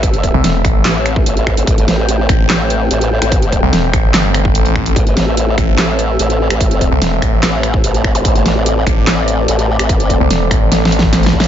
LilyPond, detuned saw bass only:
\new Staff \with { instrumentName = "Detuned saw bass" } { \clef bass \time 4/4 \key a \minor \tempo 4 = 146 r8. c,16 e,,8 a,,8 r2 | r4. a,,8 r2 | r8. c,16 e,,8 a,,8 g,,4 a,,4 | r4. a,,8 r2 |
r8. c,16 e,,8 a,,8 r2 | r4. a,,8 r2 | r8. c,16 e,,8 a,,8 a,,4. r8 | }